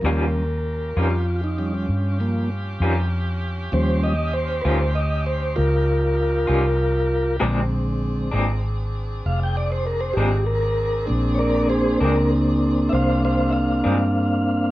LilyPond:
<<
  \new Staff \with { instrumentName = "Tonewheel organ" } { \time 12/8 \key bes \mixolydian \tempo 4. = 65 bes'4.~ bes'16 f'8 ees'8 des'8. <f bes>8 r2 | c''8 ees''8 c''8 <ces'' c''>8 ees''8 c''8 <f' bes'>2. | r2. f''16 g''16 d''16 c''16 bes'16 c''16 g'8 bes'4 | r8 <bes' des'' d''>8 <aes' c''>8 bes'8 r4 <c'' e'' f''>8 <c'' f''>8 <e'' f''>2 | }
  \new Staff \with { instrumentName = "Tonewheel organ" } { \clef bass \time 12/8 \key bes \mixolydian <f g des'>8 r2 <f g des'>8 r2. | <f g des'>8 r1 r4. | <d aes c'>4. r1 r8 | <bes c' d'>1. | }
  \new Staff \with { instrumentName = "Saxophone section" } { \time 12/8 \key bes \mixolydian << { <des' g'>1.~ | <des' g'>1. | <c' aes'>1.~ | <c' aes'>1. | } \\ { f'1. | ees'1. | d'1.~ | d'1. | } >> }
  \new Staff \with { instrumentName = "Clean electric guitar" } { \time 12/8 \key bes \mixolydian <ees g des' f'>8 r4 <ees g des' f'>8 r2 r8 <ees g des' f'>8 r4 | r4. <ees g des' f'>8 r2 r8 <ees g des' f'>8 r4 | <bes, aes c' d'>8 r4 <bes, aes c' d'>8 r2 r8 <bes, aes c' d'>8 r4 | r4. <bes, aes c' d'>8 r2 r8 <bes, aes c' d'>8 r4 | }
  \new Staff \with { instrumentName = "Fingered electric bass" } { \clef bass \time 12/8 \key bes \mixolydian ees,4. f,4. g,4. f,4. | ees,4. d,4. des,4. c,4. | bes,,4. aes,,4. f,,4. aes,,4. | bes,,4. des,4. c,4. g,4. | }
>>